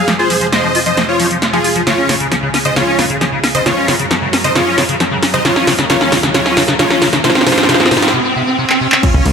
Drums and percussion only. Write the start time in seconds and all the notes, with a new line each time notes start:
0.08 snare, closed hi-hat
0.30 open hi-hat
0.41 closed hi-hat
0.53 snare, closed hi-hat
0.75 open hi-hat
0.86 closed hi-hat
0.97 snare, closed hi-hat
1.20 open hi-hat
1.31 closed hi-hat
1.42 snare, closed hi-hat
1.64 open hi-hat
1.76 closed hi-hat
1.87 snare, closed hi-hat
2.09 snare, open hi-hat
2.20 closed hi-hat
2.32 snare, closed hi-hat
2.54 snare, open hi-hat
2.65 closed hi-hat
2.76 snare, closed hi-hat
2.99 snare, open hi-hat
3.10 closed hi-hat
3.21 snare, closed hi-hat
3.44 snare, open hi-hat
3.55 closed hi-hat
3.66 snare, closed hi-hat
3.88 snare, open hi-hat
4.00 closed hi-hat
4.11 snare, closed hi-hat
4.33 snare, open hi-hat
4.44 closed hi-hat
4.55 snare, closed hi-hat
4.78 snare, open hi-hat
4.89 closed hi-hat
5.00 snare, closed hi-hat
5.23 snare, open hi-hat
5.34 closed hi-hat
5.45 snare, closed hi-hat
5.56 snare
5.67 snare, open hi-hat
5.79 snare, closed hi-hat
5.90 snare, closed hi-hat
6.01 snare
6.12 snare, open hi-hat
6.23 snare, closed hi-hat
6.34 snare, closed hi-hat
6.46 snare
6.57 snare, open hi-hat
6.68 snare, closed hi-hat
6.79 snare, closed hi-hat
6.90 snare
7.02 snare, open hi-hat
7.13 snare, closed hi-hat
7.24 snare, closed hi-hat
7.30 snare
7.35 snare
7.41 snare
7.47 snare, open hi-hat
7.52 snare
7.58 snare, closed hi-hat
7.63 snare
7.69 snare, closed hi-hat
7.74 snare
7.80 snare
7.86 snare
7.91 snare, open hi-hat
7.97 snare
8.02 snare, closed hi-hat
8.08 snare
8.70 clap
8.92 clap
9.03 kick, closed hi-hat, crash
9.26 open hi-hat